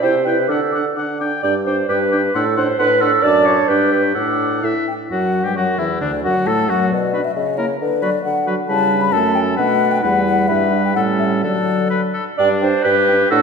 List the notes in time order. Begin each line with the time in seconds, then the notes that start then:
0.02 C3 E4 C5 G5
0.25 E4 B4 G5
0.48 D3 D4 A4 F#5 D6
0.72 D4 F#5 D6
0.96 D3 D4 F#5 D6
1.19 D4 G5 D6
1.43 G2 D4 D5 G5 D6
1.66 D4 C5 G5 D6
1.89 G2 D4 B4 G5 D6
2.11 D4 G5 D6
2.34 A2 D4 A4 F#5 C6
2.57 D4 C5 F#5 C6
2.79 A2 D4 B4 F#5 C6
3.01 D4 A4 F#5 C6
3.23 F#2 D4 D5 A5 D6
3.46 C#5
3.68 G2 D4 B4 G5 D6
3.92 B4
4.15 A2 D4 A4 F#5 D6
4.62 A2 E4 E5 F#6
4.88 G5
5.10 F#2 F#3 F#4 F#5
5.44 G2 G3 G4 G5
5.55 F#2 F#3 F#4 F#5
5.78 E2 E3 E4 E5
6.01 D2 D3 D4 D5
6.24 F#2 F#3 F#4 F#5
6.46 A2 A3 A4 A5
6.68 F#2 F#3 F#4 F#5
6.91 B2 D5
7.12 D4 F#4 B4
7.24 E5
7.35 C#3 D#5
7.58 A#3 E4 A#4 C#5
7.80 D3 B4
8.02 F#3 F#4 B4 D5
8.24 D3 F#5
8.46 F#3 F#4 B4
8.68 C#3 G3 E4 B4 A5
8.91 D4
9.01 B5
9.12 F#2 A3 C#4 A4 A5
9.34 G5
9.57 B2 A3 D4 B4 F#5
9.91 G5
10.03 E2 G3 E4 B4 F#5
10.25 F#5
10.48 G2 G3 E4 B4 E5
10.72 D4
10.84 G5
10.95 A2 G3 C#4 A4 F#5
11.19 E5
11.43 D3 F#3 D4 A4 D5
11.90 B4
12.14 A4
12.38 G2 D4 D5 G5
12.62 D4 C5 G5
12.84 G2 D4 G4 B4 G5
13.08 D4 G5
13.31 A2 D4 F#4 A4 F#5